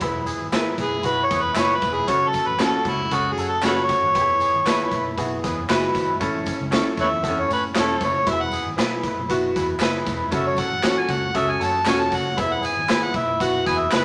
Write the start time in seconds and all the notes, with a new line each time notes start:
0.01 E1 E4 G#4 B4, kick, closed hi-hat, tambourine
0.26 G#4, closed hi-hat, tambourine
0.40 G#1
0.52 G#3 B3 E4 G#4 A#4 B4, snare, clap, closed hi-hat, tambourine
0.61 B4
0.78 B1 G#3 E4 G#4 B4, kick, closed hi-hat, tambourine
1.03 B1 E4 F#4 G#4 B4, kick, closed hi-hat, tambourine
1.24 C#5
1.30 E2 G#3 E4 G#4 B4, kick, snare, closed hi-hat, tambourine
1.42 B4
1.55 F#1 G#3 B3 E4 G#4 B4 E5, snare, clap, closed hi-hat, tambourine
1.59 C#5
1.75 B4
1.81 E1, kick, closed hi-hat, tambourine
1.93 G#4
2.07 F#1 C#4 F#4 A4 C#5, kick, closed hi-hat
2.28 A4
2.33 A4, kick, closed hi-hat, tambourine
2.46 A1 B4
2.59 F#3 C#4 F#4 A4, snare, clap, closed hi-hat, tambourine
2.64 A4
2.85 C#2 F#3 C#4 E4 A4, kick, closed hi-hat
3.11 C#2 C#4 F#4 G#4 A4, kick, closed hi-hat, tambourine
3.32 G#4
3.37 F#2 A3 F#4 A4 C#5, closed hi-hat, tambourine
3.48 A4
3.62 F#1 A3 C#4 E4 F#4 G#4 A4 B4 C#5, snare, clap, closed hi-hat, tambourine
3.77 snare
3.83 C#5
3.89 F#4, kick, snare, closed hi-hat, tambourine
4.02 G#1
4.14 E1 B3 E4 G4, kick, closed hi-hat
4.21 G#4
4.40 G#4, closed hi-hat, tambourine
4.54 G#1
4.66 G#3 B3 E4 G#4 B4, snare, clap, closed hi-hat, tambourine
4.91 B1 G#3 E4 B4, kick, closed hi-hat, tambourine
5.17 B1 B3 E4 F#4 G#4, kick, closed hi-hat, tambourine
5.44 E2 G#3 E4 G#4 B4, kick, snare, closed hi-hat, tambourine
5.68 F#1 G#3 B3 E4 F#4 G#4 B4, snare, clap, closed hi-hat, tambourine
5.83 snare
5.95 G#1, kick, snare, closed hi-hat, tambourine
6.20 A1 A3 C#4 E4 A4, kick, closed hi-hat, tambourine
6.46 C#4, kick, closed hi-hat, tambourine
6.60 C#2
6.71 A3 C#4 E4 G#4 A4 C#5, snare, clap, closed hi-hat, tambourine
6.78 A4
6.97 E2 A3 E4 B4 C#5 E5, kick, closed hi-hat
7.11 E2
7.22 E2 B3 C4 E4 A4, kick, closed hi-hat, tambourine
7.29 C#4
7.40 C#5
7.49 A2 A3 C#4 E4 C#5, closed hi-hat, tambourine
7.53 B4
7.74 E1 A3 C#4 E4 G#4 A4 C#5, snare, clap, closed hi-hat, tambourine
7.79 A4
8.01 F#1 A3 C#5, kick, closed hi-hat, tambourine
8.26 E1 B3 E4 F#4 E5, kick, closed hi-hat, tambourine
8.33 G#4
8.42 F#5
8.52 G#4, closed hi-hat, tambourine
8.66 G#1
8.77 B1 G#3 B3 E4 G#4 B4, snare, clap, closed hi-hat, tambourine
9.04 G#3 E4 B4, kick, closed hi-hat
9.18 B1
9.29 B1 B3 E4 F#4, kick, closed hi-hat, tambourine
9.56 E2 G#3 E4 G#4 B4, kick, snare, closed hi-hat, tambourine
9.79 F#1 G#3 B3 E4 G#4 B4, snare, clap, closed hi-hat, tambourine
9.95 snare
10.06 E1, kick, snare, closed hi-hat, tambourine
10.31 F#1 C#4 F#4 A4, kick, closed hi-hat, tambourine
10.35 E5
10.47 C#5
10.56 A4 F#5, kick, closed hi-hat, tambourine
10.71 A1
10.83 A3 C#4 F#4 G#4 A4 C#5, snare, clap, closed hi-hat, tambourine
10.90 A4
10.99 G#5
11.09 C#2 A3 F#4 C#5 F#5, kick, closed hi-hat, tambourine
11.34 C#2 C#4 F#4 G#4 A4 E5, kick, closed hi-hat, tambourine
11.50 G#5
11.59 F#2 A3 F#4 A4 C#5, snare, closed hi-hat, tambourine
11.64 A5
11.85 E1 A3 C#4 F#4 G#4 A4 C#5 G#5, snare, clap, closed hi-hat, tambourine
11.93 A4
12.00 A5, snare
12.12 F#1 F#4, kick, snare, open hi-hat, tambourine
12.16 F#5
12.37 E1 B3 E4 G#4 E5, kick, closed hi-hat, tambourine
12.53 F#5
12.62 G#4 G#5, closed hi-hat, tambourine
12.77 G#1
12.88 G#3 B3 E4 G#4 B4, snare, clap, closed hi-hat, tambourine
13.03 F#5
13.14 B1 G#3 E4 B4 E5, kick, closed hi-hat, tambourine
13.40 B1 B3 E4 F#4 F#5, kick, closed hi-hat, tambourine
13.66 E2 G#3 E4 G#4 B4 G#5, kick, snare, closed hi-hat, tambourine
13.79 E5
13.91 F#1 G#3 B3 E4 G#4 B4, snare, clap, closed hi-hat, tambourine